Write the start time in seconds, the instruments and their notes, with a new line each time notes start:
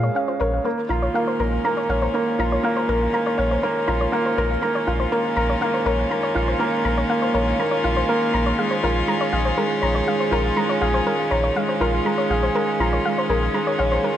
Already playing: felt piano G#3 F4 G#4 C#5 F5
0.03 synth arpeggio sound C#5
0.15 felt piano C#4, synth arpeggio sound F5
0.28 synth arpeggio sound C5
0.40 sub bass A#1, synth arpeggio sound A#4, felt piano C#5
0.64 string quartet D#3, felt piano A#3, synth arpeggio sound A#4
0.84 string quartet F4
0.89 sub bass A#1, felt piano F4, synth arpeggio sound A#5
1.02 synth arpeggio sound C#5
1.09 string quartet G#3
1.14 felt piano A#3, synth arpeggio sound F5
1.24 string quartet C#4, synth arpeggio sound C5
1.39 sub bass A#1, felt piano A#4, synth arpeggio sound A#4
1.64 felt piano A#3, synth arpeggio sound A#5
1.77 synth arpeggio sound C#5
1.89 sub bass A#1, felt piano C#5, synth arpeggio sound F5
2.02 synth arpeggio sound C5
2.14 felt piano A#3, synth arpeggio sound A#4
2.39 sub bass A#1, felt piano F4, synth arpeggio sound A#5
2.52 synth arpeggio sound C#5
2.63 felt piano A#3, synth arpeggio sound F5
2.77 synth arpeggio sound C5
2.89 sub bass A#1, felt piano A#4, synth arpeggio sound A#4
3.13 felt piano A#3, synth arpeggio sound A#5
3.26 synth arpeggio sound C#5
3.38 sub bass A#1, felt piano C#5, synth arpeggio sound F5
3.51 synth arpeggio sound C5
3.63 felt piano A#3, synth arpeggio sound A#4
3.88 sub bass A#1, felt piano F4, synth arpeggio sound A#5
4.01 synth arpeggio sound C#5
4.12 felt piano A#3, synth arpeggio sound F5
4.26 synth arpeggio sound C5
4.37 sub bass A#1, felt piano A#4, synth arpeggio sound A#4
4.62 felt piano A#3, synth arpeggio sound A#5
4.75 synth arpeggio sound C#5
4.87 sub bass A#1, felt piano F4, synth arpeggio sound F5
5.00 synth arpeggio sound C5
5.12 felt piano A#3, synth arpeggio sound A#4
5.36 sub bass A#1, felt piano A#4, synth arpeggio sound A#5
5.50 synth arpeggio sound C#5
5.61 felt piano A#3, synth arpeggio sound F5
5.74 synth arpeggio sound C5
5.85 sub bass A#1, synth arpeggio sound A#4, felt piano C#5
6.10 felt piano A#3, synth arpeggio sound A#5
6.23 synth arpeggio sound C#5
6.35 sub bass A#1, felt piano F4, synth arpeggio sound F5
6.48 synth arpeggio sound C5
6.59 felt piano A#3, synth arpeggio sound A#4
6.85 sub bass A#1, felt piano A#4, synth arpeggio sound A#5
6.98 synth arpeggio sound C#5
7.09 felt piano A#3, synth arpeggio sound F5
7.22 synth arpeggio sound C5
7.34 sub bass A#1, synth arpeggio sound A#4, felt piano C#5
7.59 felt piano A#3, synth arpeggio sound A#5
7.71 synth arpeggio sound C#5
7.84 sub bass A#1, felt piano F4, synth arpeggio sound F5
7.97 synth arpeggio sound C5
8.09 felt piano A#3, synth arpeggio sound A#4
8.34 sub bass A#1, felt piano A#4, synth arpeggio sound A#5
8.46 synth arpeggio sound C#5
8.59 felt piano G#3, synth arpeggio sound F5
8.71 synth arpeggio sound C5
8.83 sub bass A#1, felt piano F4, synth arpeggio sound A#4
9.07 felt piano G#3, synth arpeggio sound A#5
9.21 synth arpeggio sound C#5
9.33 sub bass A#1, felt piano G#4, synth arpeggio sound F5
9.45 synth arpeggio sound C5
9.57 felt piano G#3, synth arpeggio sound A#4
9.82 sub bass A#1, felt piano C#5, synth arpeggio sound A#5
9.95 synth arpeggio sound C#5
10.07 felt piano G#3, synth arpeggio sound F5
10.20 synth arpeggio sound C5
10.31 sub bass A#1, felt piano F4, synth arpeggio sound A#4
10.56 felt piano G#3, synth arpeggio sound A#5
10.69 synth arpeggio sound C#5
10.81 sub bass A#1, felt piano G#4, synth arpeggio sound F5
10.94 synth arpeggio sound C5
11.06 felt piano G#3, synth arpeggio sound A#4
11.31 sub bass A#1, felt piano C#5, synth arpeggio sound A#5
11.44 synth arpeggio sound C#5
11.56 felt piano G#3, synth arpeggio sound F5
11.69 synth arpeggio sound C5
11.81 sub bass A#1, felt piano F4, synth arpeggio sound A#4
12.05 felt piano G#3, synth arpeggio sound A#5
12.18 synth arpeggio sound C#5
12.30 sub bass A#1, felt piano G#4, synth arpeggio sound F5
12.43 synth arpeggio sound C5
12.55 felt piano G#3, synth arpeggio sound A#4
12.80 sub bass A#1, felt piano F4, synth arpeggio sound A#5
12.93 synth arpeggio sound C#5
13.05 felt piano G#3, synth arpeggio sound F5
13.18 synth arpeggio sound C5
13.29 sub bass A#1, felt piano G#4, synth arpeggio sound A#4
13.54 felt piano G#3, synth arpeggio sound A#5
13.67 synth arpeggio sound C#5
13.79 sub bass A#1, felt piano C#5, synth arpeggio sound F5
13.92 synth arpeggio sound C5
14.03 felt piano G#3, synth arpeggio sound A#4